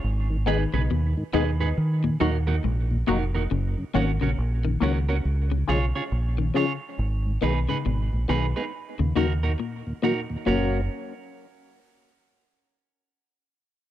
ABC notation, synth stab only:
X:1
M:4/4
L:1/8
Q:"Swing 16ths" 1/4=69
K:F#
V:1 name="Synth stab"
z [B,DG] z [B,DG] z [A,DF] z [A,DF] | z [A,CF] z [A,CF] z [CEG] z [CEG] | z [B,DG] z [B,DG] z [A,DF] z [A,DF] | [A,CF] z6 z |]